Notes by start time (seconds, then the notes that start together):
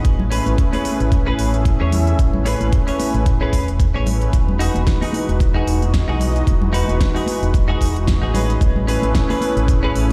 Already playing: C#4 G#4 B4
0.04 A1 A3 C#4 E4 G#4 B4, kick, closed hi-hat
0.20 low conga
0.30 C#4 G#4 B4, open hi-hat
0.46 A1, closed hi-hat, high conga
0.58 kick, closed hi-hat
0.73 C#4 G#4 B4, open hi-hat, high conga
0.85 open hi-hat, high conga
1.00 A1, closed hi-hat
1.12 kick, closed hi-hat
1.26 C#4 G#4 B4
1.38 A1 A3 C#4 E4 G#4 E5, open hi-hat
1.54 closed hi-hat, high conga
1.65 kick, closed hi-hat
1.80 E2 C#4 G#4 C#5
1.92 open hi-hat, low conga
2.07 muted clean electric guitar stroke, closed hi-hat
2.18 A1 A3 C#4 E4 G#4 B4, kick, closed hi-hat
2.33 low conga
2.45 C#4 G#4 B4, open hi-hat
2.60 A1, closed hi-hat, high conga
2.73 kick, closed hi-hat
2.87 C#4 G#4 C#5, open hi-hat
3.00 open hi-hat, high conga
3.14 A1, closed hi-hat
3.26 kick, closed hi-hat
3.41 C#4 G#4 B4
3.53 E1, kick, open hi-hat
3.68 closed hi-hat
3.80 kick, closed hi-hat
3.94 A1 C#4 G#4 C#5
4.06 open hi-hat, low conga
4.22 muted clean electric guitar stroke, closed hi-hat
4.32 E1 E3 G#3 D#4 F#4 B4, kick, closed hi-hat
4.49 low conga
4.59 D#4 F#4 G#4, open hi-hat
4.74 E1, closed hi-hat, high conga
4.87 kick, snare, closed hi-hat
5.01 D#4 F#4 G#4, open hi-hat, high conga
5.13 open hi-hat, high conga
5.28 E1, closed hi-hat
5.40 kick, closed hi-hat
5.54 D#4 F#4 G#4
5.67 E1 E3 G#3 D#4 F#4 D#5, open hi-hat
5.81 closed hi-hat, high conga
5.94 kick, snare, closed hi-hat
6.08 B1 D#4 F#4 G#4
6.20 open hi-hat, low conga
6.35 muted clean electric guitar stroke, closed hi-hat
6.46 E1 E3 G#3 D#4 F#4 B4, kick, closed hi-hat
6.62 low conga
6.73 D#4 F#4 B4, open hi-hat
6.88 E1, closed hi-hat, high conga
7.01 kick, snare, closed hi-hat
7.15 D#4 F#4 G#4, open hi-hat
7.26 open hi-hat, high conga
7.42 E1, closed hi-hat
7.54 kick, closed hi-hat
7.68 D#4 F#4 G#4
7.80 E1 E3 G#3 D#4 F#4 D#5, kick, open hi-hat
7.96 closed hi-hat
8.08 kick, snare, closed hi-hat
8.22 A1 D#4 F#4 G#4
8.33 C#4 G#4 B4, open hi-hat, low conga
8.50 closed hi-hat
8.60 A1 A3 C#4 E4 G#4 B4, kick, closed hi-hat
8.76 low conga
8.87 C#4 G#4 B4, open hi-hat
9.02 A1, closed hi-hat, high conga
9.15 kick, snare, closed hi-hat
9.29 C#4 G#4 B4, open hi-hat, high conga
9.41 open hi-hat, high conga
9.56 A1, closed hi-hat
9.68 kick, closed hi-hat
9.83 C#4 G#4 B4
9.94 A1 A3 C#4 E4 G#4 E5, open hi-hat